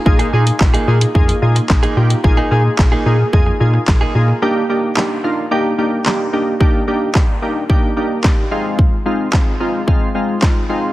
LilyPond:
<<
  \new Staff \with { instrumentName = "Clean electric guitar" } { \time 4/4 \key ees \major \tempo 4 = 110 r16 <bes ees' aes'>16 <bes ees' aes'>16 r8 <bes ees' aes'>16 <bes ees' aes'>16 r4. <bes ees' aes'>16 r8 | r16 <bes ees' aes'>16 <bes ees' aes'>16 r8 <bes ees' aes'>16 <bes ees' aes'>16 r4. <bes ees' aes'>16 r8 | r1 | r1 |
r1 | }
  \new Staff \with { instrumentName = "Synth keys" } { \time 4/4 \key ees \major <bes ees' f' aes'>8 <bes ees' f' aes'>8 <bes ees' f' g'>8 <bes ees' f' aes'>8 <bes ees' f' aes'>8 <bes ees' f' aes'>8 <bes ees' f' aes'>8 <bes ees' f' g'>8 | <bes ees' f' aes'>8 <bes ees' f' aes'>8 <bes ees' f' aes'>8 <bes ees' f' aes'>8 <bes ees' f' aes'>8 <bes ees' f' aes'>8 <bes ees' f' aes'>8 <bes ees' f' aes'>8 | <bes d' ees' g'>8 <bes d' ees' g'>8 <bes d' ees' g'>8 <bes d' ees' f'>8 <bes d' ees' g'>8 <bes d' ees' g'>8 <bes d' ees' g'>8 <bes d' ees' g'>8 | <bes d' ees' g'>8 <bes d' ees' g'>8 <bes d' ees' g'>8 <bes d' ees' g'>8 <bes d' ees' g'>8 <bes d' ees' g'>8 <bes d' ees' g'>8 <aes c' ees' f'>8~ |
<aes c' ees' f'>8 <aes c' ees' f'>8 <aes c' ees'>8 <aes c' ees' f'>8 <aes c' ees' f'>8 <aes c' ees' f'>8 <aes c' ees' f'>8 <aes c' ees' f'>8 | }
  \new Staff \with { instrumentName = "FM bass" } { \clef bass \time 4/4 \key ees \major bes,,8 bes,8 bes,,8 bes,8 f,8 bes,8 bes,,8 bes,8 | bes,,8 bes,8 bes,,8 bes,8 f,8 bes,8 bes,,8 bes,8 | r1 | r1 |
r1 | }
  \new DrumStaff \with { instrumentName = "Drums" } \drummode { \time 4/4 bd16 hh8 hh16 <hc bd sn>16 hh8 hh16 bd16 hh8 hh16 <hc bd sn>16 hh8 hh16 | bd4 <hc bd sn>4 bd4 <hc bd sn>4 | r4 <hc sn>4 r4 <hc sn>4 | bd4 <hc bd sn>4 bd4 <hc bd sn>4 |
bd4 <hc bd sn>4 bd4 <hc bd sn>4 | }
>>